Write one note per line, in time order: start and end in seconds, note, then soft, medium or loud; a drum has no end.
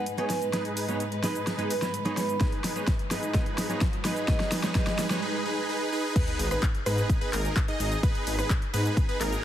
0.00 5.18 G#2 medium
0.00 5.18 G#3 medium
0.00 5.18 D#4 medium
0.00 5.18 B4 medium
0.00 riser medium
0.06 closed hi-hat medium
0.06 shaker soft
0.17 0.50 G#3 medium
0.17 0.50 B3 medium
0.17 0.50 D#4 medium
0.17 0.33 D#4 medium
0.17 0.33 G#4 medium
0.17 0.51 B4 loud
0.17 0.33 C#5 loud
0.17 0.36 G#5 medium
0.17 closed hi-hat soft
0.30 snare medium
0.30 open hi-hat medium
0.30 shaker medium
0.42 closed hi-hat soft
0.42 shaker soft
0.52 0.62 G#3 medium
0.52 0.62 B3 medium
0.52 0.63 D#4 medium
0.52 0.86 D#4 loud
0.52 0.86 G#4 medium
0.52 0.86 B4 loud
0.52 0.63 B4 loud
0.52 snare medium
0.52 closed hi-hat medium
0.52 shaker soft
0.65 closed hi-hat soft
0.77 open hi-hat loud
0.77 shaker medium
0.88 1.03 G#3 medium
0.88 1.03 B3 medium
0.88 1.03 D#4 medium
0.88 1.03 G#4 medium
0.88 1.03 B4 loud
0.88 1.03 C#5 medium
0.88 closed hi-hat soft
0.88 shaker soft
1.00 closed hi-hat medium
1.00 shaker soft
1.12 closed hi-hat soft
1.23 1.32 G#3 medium
1.23 1.33 B3 medium
1.23 1.33 D#4 medium
1.23 1.56 D#4 medium
1.23 1.56 G#4 medium
1.23 1.56 B4 loud
1.23 1.33 B4 loud
1.23 1.41 B5 medium
1.23 snare medium
1.23 open hi-hat medium
1.23 shaker medium
1.35 closed hi-hat soft
1.35 shaker soft
1.47 snare medium
1.47 closed hi-hat medium
1.47 shaker soft
1.58 1.73 G#3 medium
1.58 1.73 B3 medium
1.58 1.73 D#4 medium
1.58 1.74 D#4 medium
1.58 1.73 G#4 medium
1.58 1.73 B4 loud
1.58 1.74 B4 medium
1.58 closed hi-hat soft
1.70 open hi-hat loud
1.70 shaker medium
1.81 1.91 G#3 medium
1.81 1.91 B3 medium
1.81 1.91 D#4 medium
1.81 1.92 B4 medium
1.81 2.03 B5 medium
1.81 snare medium
1.81 closed hi-hat soft
1.81 shaker soft
1.94 closed hi-hat medium
1.94 shaker soft
2.05 2.37 G#3 medium
2.05 2.38 B3 medium
2.05 2.20 D#4 medium
2.05 2.38 D#4 medium
2.05 2.20 G#4 medium
2.05 2.38 B4 loud
2.05 2.20 C#5 loud
2.05 2.41 B5 medium
2.05 closed hi-hat soft
2.17 snare medium
2.17 open hi-hat medium
2.17 shaker medium
2.29 closed hi-hat soft
2.29 shaker soft
2.40 2.50 G#3 medium
2.40 2.50 B3 medium
2.40 2.73 D#4 medium
2.40 2.50 D#4 medium
2.40 2.73 G#4 medium
2.40 2.73 B4 loud
2.40 2.50 B4 medium
2.40 kick loud
2.40 snare medium
2.40 closed hi-hat medium
2.40 shaker soft
2.52 closed hi-hat soft
2.64 snare medium
2.64 open hi-hat loud
2.64 shaker medium
2.75 2.90 G#3 medium
2.75 2.91 B3 medium
2.75 2.90 D#4 medium
2.75 2.91 D#4 medium
2.75 2.90 G#4 medium
2.75 2.90 B4 medium
2.75 2.91 C#5 medium
2.75 closed hi-hat soft
2.75 shaker soft
2.87 kick loud
2.87 snare medium
2.87 closed hi-hat medium
2.87 shaker soft
2.99 closed hi-hat soft
3.10 3.20 G#3 medium
3.10 3.20 B3 medium
3.10 3.20 D#4 medium
3.10 3.33 D#4 medium
3.10 3.33 G#4 medium
3.10 3.33 B4 medium
3.10 3.21 B4 medium
3.10 3.32 D#5 medium
3.10 snare medium
3.10 open hi-hat loud
3.10 shaker medium
3.23 closed hi-hat soft
3.23 shaker soft
3.34 3.43 G#3 medium
3.34 3.44 B3 medium
3.34 3.44 D#4 medium
3.34 3.44 B4 loud
3.34 kick loud
3.34 snare medium
3.34 closed hi-hat medium
3.34 shaker soft
3.46 closed hi-hat soft
3.58 snare medium
3.58 open hi-hat loud
3.58 shaker medium
3.69 3.84 G#3 medium
3.69 3.84 B3 medium
3.69 3.85 D#4 medium
3.69 3.84 D#4 medium
3.69 3.84 G#4 medium
3.69 3.84 B4 loud
3.69 3.85 C#5 medium
3.69 closed hi-hat soft
3.69 shaker soft
3.81 kick loud
3.81 snare medium
3.81 closed hi-hat medium
3.81 shaker soft
3.93 closed hi-hat soft
4.04 4.14 G#3 medium
4.04 4.14 B3 medium
4.04 4.14 D#4 medium
4.04 4.26 D#4 medium
4.04 4.26 G#4 medium
4.04 4.26 B4 loud
4.04 4.14 B4 loud
4.04 4.26 D#5 medium
4.04 snare medium
4.04 open hi-hat loud
4.04 shaker medium
4.16 closed hi-hat soft
4.16 shaker soft
4.28 4.37 G#3 medium
4.28 4.37 B3 medium
4.28 4.38 D#4 medium
4.28 4.61 G#4 medium
4.28 4.61 B4 loud
4.28 4.38 B4 loud
4.28 4.49 D#5 medium
4.28 kick loud
4.28 snare medium
4.28 closed hi-hat medium
4.28 shaker soft
4.40 snare medium
4.40 closed hi-hat soft
4.52 snare medium
4.52 open hi-hat loud
4.52 shaker medium
4.63 4.73 G#3 medium
4.63 4.73 B3 medium
4.63 4.73 D#4 medium
4.63 4.73 G#4 medium
4.63 4.73 B4 loud
4.63 4.73 C#5 medium
4.63 snare medium
4.63 closed hi-hat soft
4.63 shaker soft
4.74 4.84 G#3 medium
4.74 4.84 B3 medium
4.74 4.84 D#4 medium
4.74 5.07 G#4 medium
4.74 5.07 B4 loud
4.74 4.85 B4 loud
4.74 4.96 D#5 medium
4.74 kick loud
4.74 snare medium
4.74 closed hi-hat medium
4.74 shaker soft
4.87 snare medium
4.87 closed hi-hat soft
4.99 snare loud
4.99 open hi-hat loud
4.99 shaker medium
5.09 5.20 G#3 medium
5.09 5.20 B3 medium
5.09 5.20 D#4 medium
5.09 5.20 G#4 medium
5.09 5.20 B4 loud
5.09 5.20 C#5 medium
5.09 snare medium
5.09 closed hi-hat soft
5.09 shaker soft
5.22 5.44 D#4 loud
5.22 5.44 G#4 loud
5.22 5.44 B4 loud
5.45 5.67 D#4 loud
5.45 5.67 G#4 medium
5.45 5.67 B4 loud
5.69 5.90 D#4 loud
5.69 5.90 G#4 medium
5.69 5.90 B4 loud
5.92 6.14 D#4 loud
5.92 6.14 G#4 loud
5.92 6.14 B4 loud
6.16 6.48 B4 loud
6.16 kick loud
6.16 closed hi-hat medium
6.16 crash loud
6.16 sub drop medium
6.16 shaker soft
6.28 closed hi-hat soft
6.39 6.54 G#1 loud
6.39 open hi-hat loud
6.39 shaker medium
6.51 6.66 D#4 medium
6.51 6.65 G#4 medium
6.51 6.65 B4 loud
6.51 6.66 B4 loud
6.51 cross-stick medium
6.51 closed hi-hat soft
6.51 shaker soft
6.63 kick loud
6.63 clap loud
6.63 closed hi-hat medium
6.63 shaker soft
6.75 closed hi-hat soft
6.86 7.01 G#2 medium
6.86 7.18 D#4 medium
6.86 7.18 G#4 medium
6.86 7.18 B4 loud
6.86 cross-stick medium
6.86 open hi-hat medium
6.86 shaker medium
6.98 closed hi-hat soft
6.98 shaker soft
7.09 kick loud
7.09 closed hi-hat medium
7.09 shaker soft
7.21 7.31 D#4 medium
7.21 7.31 G#4 medium
7.21 7.31 B4 loud
7.21 closed hi-hat soft
7.33 7.48 G#1 medium
7.33 7.56 D#4 medium
7.33 7.56 G#4 medium
7.33 7.56 A#4 medium
7.33 clap medium
7.33 open hi-hat loud
7.33 shaker medium
7.45 closed hi-hat soft
7.45 shaker soft
7.56 kick loud
7.56 clap loud
7.56 closed hi-hat medium
7.56 shaker soft
7.68 8.00 D#4 medium
7.68 8.00 G#4 medium
7.68 8.00 D#5 loud
7.68 closed hi-hat soft
7.80 7.95 G#1 loud
7.80 open hi-hat medium
7.80 shaker medium
7.92 closed hi-hat soft
7.92 shaker soft
8.03 8.36 D#4 loud
8.03 8.36 G#4 medium
8.03 8.36 B4 loud
8.03 kick loud
8.03 closed hi-hat medium
8.03 shaker soft
8.15 closed hi-hat soft
8.27 8.42 G#1 loud
8.27 open hi-hat loud
8.27 shaker medium
8.38 8.53 D#4 medium
8.38 8.53 G#4 medium
8.38 8.53 B4 loud
8.38 cross-stick medium
8.38 closed hi-hat soft
8.38 shaker soft
8.50 kick loud
8.50 clap loud
8.50 closed hi-hat medium
8.50 shaker soft
8.62 closed hi-hat soft
8.73 8.89 G#2 medium
8.73 9.06 D#4 medium
8.73 9.06 G#4 medium
8.73 9.06 B4 loud
8.73 open hi-hat loud
8.73 shaker medium
8.86 closed hi-hat soft
8.86 shaker soft
8.97 kick loud
8.97 closed hi-hat medium
8.97 shaker soft
9.09 9.18 D#4 loud
9.09 9.18 G#4 medium
9.09 9.18 B4 loud
9.09 closed hi-hat soft
9.20 9.36 G#1 medium
9.20 9.44 D#4 medium
9.20 9.44 G#4 medium
9.20 9.44 A#4 medium
9.20 clap medium
9.20 open hi-hat loud
9.20 shaker medium
9.32 closed hi-hat soft
9.32 shaker soft